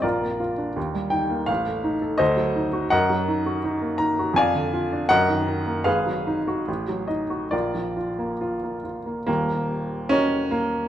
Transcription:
X:1
M:2/4
L:1/16
Q:1/4=82
K:Dphr
V:1 name="Upright piano"
[FBd]6 g2 | f4 [Ace]4 | [K:Ebm] [Beg]6 b2 | [=dfa]4 [Beg]4 |
[Acf]6 ^d2 | [FB=d]6 z2 | B,4 D2 B,2 |]
V:2 name="Upright piano"
B,,, B, F D E,, G, E B, | A,,, A, E A D,, ^F, E ^F | [K:Ebm] G,, G, E G E B, E G | F,, =D, F =D G,, E, E B, |
A,,, G, E G =A,,, ^F, ^D ^F | B,,, F, F B, F B, F B, | [E,,,E,,]4 [GBe]4 |]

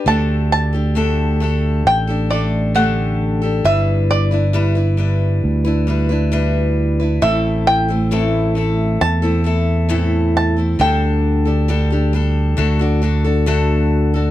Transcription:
X:1
M:4/4
L:1/16
Q:1/4=67
K:Dmix
V:1 name="Five-string banjo"
a2 a6 g2 d2 f4 | e2 d6 z8 | e2 g4 z2 a6 a2 | g6 z8 z2 |]
V:2 name="Steel-string acoustic guitar"
[D,A,DGA]3 [DGA] [D,A,DGA]2 [A,DGA]3 [DGA] [A,DGA]2 [D,A,DGA]3 [DGA] | [G,DEB]3 [DEB] [G,DEB] [DEB] [G,DEB]3 [DEB] [G,DEB] [DEB] [G,DEB]3 [DEB] | [A,,E,A,CEA]3 [A,CEA] [A,,E,A,CEA]2 [A,CEA]3 [A,CEA] [A,CEA]2 [A,,E,A,CEA]3 [A,CEA] | [D,G,DGA]3 [DGA] [D,G,DGA] [DGA] [G,DGA]2 [D,A,DFA] [DFA] [A,DFA] [DFA] [D,A,DFA]3 [DFA] |]
V:3 name="Fingered electric bass" clef=bass
D,,8 A,,,8 | G,,,8 D,,8 | A,,,8 E,,8 | D,,8 D,,8 |]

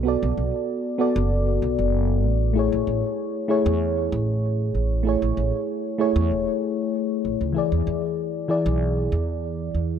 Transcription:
X:1
M:4/4
L:1/16
Q:1/4=96
K:A
V:1 name="FM electric piano"
[B,FAd]6 [B,FAd]2 z8 | [A,EGc]6 [A,EGc]2 z8 | [A,EGc]6 [A,EGc]2 z8 | [E,EGd]6 [E,EGd]2 z8 |]
V:2 name="Upright bass" clef=bass
B,,, B,,, B,,, z4 F,,,3 B,,, F,,,3 A,,,2- | A,,, A,,, A,,, z4 E,,3 A,,,4 A,,,2- | A,,, A,,, A,,, z4 E,, E,,, z4 z A,,, C,, | z E,, E,, z4 B,,,3 E,,4 E,,2 |]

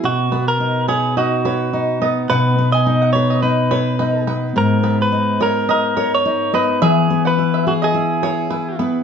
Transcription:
X:1
M:4/4
L:1/16
Q:"Swing 16ths" 1/4=106
K:B
V:1 name="Five-string banjo"
z2 B z3 c2 d2 c z3 d z | f2 z g z f z d2 z c z B z B z | z2 B z3 c2 d2 c z3 d z | e2 z f z e z d2 z c z B z B z |]
V:2 name="Clean electric guitar"
F3 A3 G2 F6 z2 | B3 d3 c2 B6 z2 | A3 B3 A2 A3 c3 B2 | G3 B3 F G6- G z2 |]
V:3 name="Steel-string acoustic guitar"
B,,2 B,2 D2 B2 D2 B2 D2 B,2 | B,,2 B,2 D2 B2 D2 B2 D2 B,2 | G,,2 B,2 D2 A2 D2 A2 D2 B,2 | E,2 B,2 E2 G2 E2 G2 E2 B,2 |]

